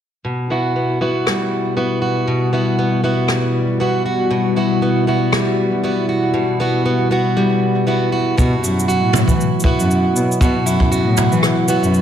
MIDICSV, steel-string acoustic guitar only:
0, 0, Header, 1, 2, 480
1, 0, Start_track
1, 0, Tempo, 508475
1, 228, Time_signature, 4, 2, 24, 8
1, 11343, End_track
2, 0, Start_track
2, 0, Title_t, "Steel-string acoustic guitar"
2, 0, Program_c, 0, 25
2, 232, Note_on_c, 0, 47, 68
2, 475, Note_on_c, 0, 59, 52
2, 482, Note_on_c, 0, 64, 51
2, 487, Note_on_c, 0, 66, 58
2, 712, Note_off_c, 0, 59, 0
2, 716, Note_on_c, 0, 59, 55
2, 950, Note_off_c, 0, 59, 0
2, 953, Note_on_c, 0, 59, 55
2, 954, Note_off_c, 0, 64, 0
2, 958, Note_on_c, 0, 64, 51
2, 960, Note_off_c, 0, 66, 0
2, 964, Note_on_c, 0, 66, 60
2, 1194, Note_on_c, 0, 55, 55
2, 1664, Note_off_c, 0, 59, 0
2, 1668, Note_on_c, 0, 59, 57
2, 1669, Note_off_c, 0, 64, 0
2, 1672, Note_off_c, 0, 66, 0
2, 1672, Note_on_c, 0, 64, 54
2, 1676, Note_on_c, 0, 66, 61
2, 1901, Note_off_c, 0, 66, 0
2, 1905, Note_on_c, 0, 66, 58
2, 2136, Note_off_c, 0, 47, 0
2, 2147, Note_on_c, 0, 47, 74
2, 2382, Note_off_c, 0, 59, 0
2, 2386, Note_on_c, 0, 59, 54
2, 2390, Note_off_c, 0, 64, 0
2, 2393, Note_on_c, 0, 64, 53
2, 2395, Note_off_c, 0, 66, 0
2, 2399, Note_on_c, 0, 66, 59
2, 2626, Note_off_c, 0, 59, 0
2, 2630, Note_on_c, 0, 59, 57
2, 2863, Note_off_c, 0, 59, 0
2, 2866, Note_on_c, 0, 59, 58
2, 2867, Note_off_c, 0, 64, 0
2, 2871, Note_on_c, 0, 64, 56
2, 2873, Note_off_c, 0, 66, 0
2, 2877, Note_on_c, 0, 66, 61
2, 3100, Note_off_c, 0, 55, 0
2, 3103, Note_on_c, 0, 55, 60
2, 3583, Note_off_c, 0, 59, 0
2, 3587, Note_on_c, 0, 59, 57
2, 3589, Note_off_c, 0, 64, 0
2, 3593, Note_on_c, 0, 64, 55
2, 3595, Note_off_c, 0, 66, 0
2, 3599, Note_on_c, 0, 66, 61
2, 3825, Note_off_c, 0, 66, 0
2, 3829, Note_on_c, 0, 66, 59
2, 4053, Note_off_c, 0, 47, 0
2, 4064, Note_on_c, 0, 47, 71
2, 4304, Note_off_c, 0, 59, 0
2, 4308, Note_on_c, 0, 59, 51
2, 4309, Note_off_c, 0, 64, 0
2, 4313, Note_on_c, 0, 64, 57
2, 4314, Note_off_c, 0, 66, 0
2, 4318, Note_on_c, 0, 66, 64
2, 4548, Note_off_c, 0, 59, 0
2, 4552, Note_on_c, 0, 59, 57
2, 4784, Note_off_c, 0, 59, 0
2, 4788, Note_on_c, 0, 59, 57
2, 4793, Note_off_c, 0, 64, 0
2, 4797, Note_off_c, 0, 66, 0
2, 4797, Note_on_c, 0, 64, 58
2, 4801, Note_on_c, 0, 66, 61
2, 5024, Note_off_c, 0, 55, 0
2, 5028, Note_on_c, 0, 55, 67
2, 5504, Note_off_c, 0, 59, 0
2, 5508, Note_on_c, 0, 59, 59
2, 5511, Note_off_c, 0, 64, 0
2, 5515, Note_on_c, 0, 64, 58
2, 5516, Note_off_c, 0, 66, 0
2, 5520, Note_on_c, 0, 66, 66
2, 5744, Note_off_c, 0, 66, 0
2, 5747, Note_on_c, 0, 66, 58
2, 5971, Note_off_c, 0, 47, 0
2, 5982, Note_on_c, 0, 47, 78
2, 6225, Note_off_c, 0, 59, 0
2, 6229, Note_on_c, 0, 59, 59
2, 6231, Note_off_c, 0, 64, 0
2, 6235, Note_on_c, 0, 64, 55
2, 6238, Note_off_c, 0, 66, 0
2, 6242, Note_on_c, 0, 66, 66
2, 6468, Note_off_c, 0, 59, 0
2, 6471, Note_on_c, 0, 59, 62
2, 6706, Note_off_c, 0, 59, 0
2, 6710, Note_on_c, 0, 59, 60
2, 6714, Note_off_c, 0, 64, 0
2, 6718, Note_on_c, 0, 64, 57
2, 6720, Note_off_c, 0, 66, 0
2, 6724, Note_on_c, 0, 66, 69
2, 6951, Note_off_c, 0, 55, 0
2, 6955, Note_on_c, 0, 55, 70
2, 7423, Note_off_c, 0, 59, 0
2, 7427, Note_on_c, 0, 59, 61
2, 7429, Note_off_c, 0, 64, 0
2, 7432, Note_on_c, 0, 64, 61
2, 7436, Note_off_c, 0, 66, 0
2, 7439, Note_on_c, 0, 66, 62
2, 7665, Note_off_c, 0, 66, 0
2, 7668, Note_on_c, 0, 66, 63
2, 7894, Note_off_c, 0, 47, 0
2, 7906, Note_on_c, 0, 47, 80
2, 7909, Note_off_c, 0, 66, 0
2, 7913, Note_on_c, 0, 66, 66
2, 8142, Note_off_c, 0, 64, 0
2, 8145, Note_on_c, 0, 64, 58
2, 8381, Note_off_c, 0, 66, 0
2, 8385, Note_on_c, 0, 66, 66
2, 8413, Note_off_c, 0, 55, 0
2, 8615, Note_off_c, 0, 64, 0
2, 8626, Note_on_c, 0, 64, 57
2, 9096, Note_off_c, 0, 64, 0
2, 9098, Note_off_c, 0, 59, 0
2, 9102, Note_on_c, 0, 59, 57
2, 9107, Note_on_c, 0, 64, 54
2, 9113, Note_off_c, 0, 66, 0
2, 9116, Note_on_c, 0, 66, 61
2, 9815, Note_off_c, 0, 47, 0
2, 9827, Note_on_c, 0, 47, 78
2, 9829, Note_off_c, 0, 66, 0
2, 9833, Note_on_c, 0, 66, 70
2, 10053, Note_off_c, 0, 64, 0
2, 10065, Note_on_c, 0, 64, 60
2, 10301, Note_off_c, 0, 66, 0
2, 10305, Note_on_c, 0, 66, 69
2, 10536, Note_off_c, 0, 64, 0
2, 10548, Note_on_c, 0, 64, 58
2, 11024, Note_off_c, 0, 59, 0
2, 11024, Note_off_c, 0, 64, 0
2, 11028, Note_on_c, 0, 59, 55
2, 11035, Note_on_c, 0, 64, 59
2, 11036, Note_off_c, 0, 66, 0
2, 11040, Note_on_c, 0, 66, 62
2, 11343, Note_off_c, 0, 47, 0
2, 11343, Note_off_c, 0, 59, 0
2, 11343, Note_off_c, 0, 64, 0
2, 11343, Note_off_c, 0, 66, 0
2, 11343, End_track
0, 0, End_of_file